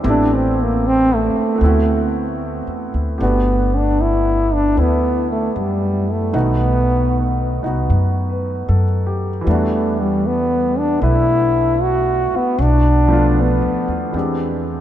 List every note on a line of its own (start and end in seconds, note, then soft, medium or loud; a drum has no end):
0.04 1.31 A1 loud
0.04 1.54 A3 medium
0.04 1.56 B3 medium
0.04 1.59 C4 medium
0.04 1.61 E4 soft
0.04 1.61 G4 medium
0.10 0.37 D4 medium
0.36 0.64 C4 medium
0.63 0.89 A#3 medium
0.87 1.17 C4 loud
1.15 2.35 A3 medium
1.35 muted upright bass stroke soft
1.55 3.16 A3 medium
1.55 3.18 B3 soft
1.61 2.62 D2 medium
1.61 3.19 C4 soft
1.61 3.21 E4 soft
1.66 3.21 F#4 medium
2.67 2.91 E2 medium
2.94 3.18 D2 medium
3.18 4.73 G1 medium
3.18 4.74 A3 soft
3.18 4.76 B3 soft
3.18 6.35 D4 soft
3.18 6.33 G4 soft
3.23 3.78 B3 medium
3.23 6.33 F#4 medium
3.77 4.03 D4 medium
4.01 4.56 E4 medium
4.54 4.81 D4 medium
4.75 5.51 D2 medium
4.75 6.32 A3 soft
4.75 6.32 B3 soft
4.75 6.34 E4 soft
4.80 5.31 B3 medium
5.32 5.60 A3 medium
5.56 6.30 F#2 medium
5.56 6.13 G3 medium
6.11 6.35 A3 medium
6.33 7.60 B1 medium
6.33 9.46 D#3 medium
6.33 9.46 A3 soft
6.33 7.61 B3 soft
6.33 7.62 B3 medium
6.33 7.62 D#4 soft
6.33 7.64 F#4 medium
7.63 7.88 C2 medium
7.63 9.45 B3 soft
7.63 9.46 D#4 soft
7.63 9.47 F#4 soft
7.90 8.64 F#2 medium
8.30 8.84 B4 soft
8.69 9.42 F#2 medium
8.69 9.29 A4 soft
9.07 9.61 G4 soft
9.41 12.55 E3 medium
9.41 12.57 G3 soft
9.47 10.98 E2 medium
9.47 10.02 A3 medium
9.47 12.58 B3 soft
9.47 11.00 D4 medium
9.52 12.61 F#4 medium
10.01 10.28 G3 medium
10.27 10.80 B3 medium
10.79 11.03 D4 medium
11.00 12.28 B1 medium
11.00 12.57 A3 soft
11.00 12.58 D4 soft
11.00 12.58 E4 soft
11.00 11.84 E4 medium
11.00 12.59 B4 soft
11.83 12.38 F#4 medium
12.32 muted upright bass stroke soft
12.37 12.64 B3 medium
12.59 13.58 B1 medium
12.59 13.43 D4 loud
13.08 14.13 F3 medium
13.08 14.13 A3 medium
13.08 14.14 B3 medium
13.08 14.15 D4 medium
13.13 14.16 F4 medium
13.41 14.17 B3 medium
13.88 14.12 D#2 medium
14.12 14.80 E2 medium
14.12 14.80 E3 soft
14.12 14.80 G#3 soft
14.12 14.80 C4 soft
14.16 14.80 D4 soft
14.16 14.80 G4 soft